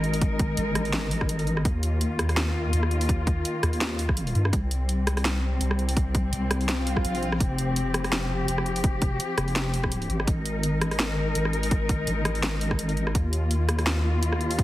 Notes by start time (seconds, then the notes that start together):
Already playing: G#1 G#3 D#4 A#4
0.04 closed hi-hat
0.14 open hi-hat
0.21 kick, closed hi-hat
0.39 kick, closed hi-hat
0.57 G#1, closed hi-hat
0.75 cross-stick, closed hi-hat
0.85 open hi-hat
0.93 snare, closed hi-hat
1.11 open hi-hat
1.21 kick, cross-stick
1.29 closed hi-hat
1.39 open hi-hat
1.47 closed hi-hat
1.57 cross-stick
1.64 D#2 D#3 A#3 F4, kick, closed hi-hat
1.83 closed hi-hat
2.01 closed hi-hat
2.19 cross-stick, closed hi-hat
2.29 cross-stick, open hi-hat
2.37 snare, closed hi-hat
2.73 D#2, closed hi-hat
2.83 cross-stick
2.91 closed hi-hat
3.01 open hi-hat
3.09 kick, closed hi-hat
3.27 kick, closed hi-hat
3.45 closed hi-hat
3.63 D#2, cross-stick, closed hi-hat
3.73 open hi-hat
3.81 snare, closed hi-hat
3.99 open hi-hat
4.09 kick, cross-stick
4.17 closed hi-hat
4.27 open hi-hat
4.35 G2, closed hi-hat
4.45 cross-stick
4.53 C2 C3 G3 C4, kick, closed hi-hat
4.71 closed hi-hat
4.89 closed hi-hat
5.07 cross-stick, closed hi-hat
5.17 cross-stick, open hi-hat
5.25 snare, closed hi-hat
5.61 C2, closed hi-hat
5.71 cross-stick
5.79 closed hi-hat
5.89 open hi-hat
5.97 kick, closed hi-hat
6.15 kick, closed hi-hat
6.32 C2, closed hi-hat
6.51 cross-stick, closed hi-hat
6.61 open hi-hat
6.69 snare, closed hi-hat, swell
6.87 open hi-hat
6.96 kick, cross-stick
7.04 A#1, closed hi-hat
7.15 open hi-hat
7.23 closed hi-hat
7.32 cross-stick
7.40 F1 F3 G4, kick, closed hi-hat
7.58 closed hi-hat
7.76 closed hi-hat
7.94 cross-stick, closed hi-hat
8.04 cross-stick, open hi-hat
8.12 snare, closed hi-hat
8.48 F1, closed hi-hat
8.58 cross-stick
8.66 closed hi-hat
8.76 open hi-hat
8.84 kick, closed hi-hat
9.02 kick, closed hi-hat
9.20 closed hi-hat
9.38 F1, cross-stick, closed hi-hat
9.48 open hi-hat
9.56 snare, closed hi-hat
9.74 open hi-hat
9.83 kick, cross-stick
9.92 closed hi-hat
10.02 open hi-hat
10.09 G#1, closed hi-hat
10.20 cross-stick
10.27 G#1 G#3 D#4 A#4, kick, closed hi-hat
10.46 closed hi-hat
10.63 closed hi-hat
10.81 cross-stick, closed hi-hat
10.91 cross-stick, open hi-hat
10.99 snare, closed hi-hat
11.35 G#1, closed hi-hat
11.45 cross-stick
11.53 closed hi-hat
11.63 open hi-hat
11.71 kick, closed hi-hat
11.89 kick, closed hi-hat
12.07 G#1, closed hi-hat
12.25 cross-stick, closed hi-hat
12.35 open hi-hat
12.43 snare, closed hi-hat
12.61 open hi-hat
12.71 kick, cross-stick
12.79 closed hi-hat
12.89 open hi-hat
12.97 closed hi-hat
13.07 cross-stick
13.15 D#2 D#3 A#3 F4, kick, closed hi-hat
13.33 closed hi-hat
13.51 closed hi-hat
13.69 cross-stick, closed hi-hat
13.79 cross-stick, open hi-hat
13.87 snare, closed hi-hat
14.22 D#2, closed hi-hat
14.33 cross-stick
14.41 closed hi-hat
14.51 open hi-hat
14.59 kick, closed hi-hat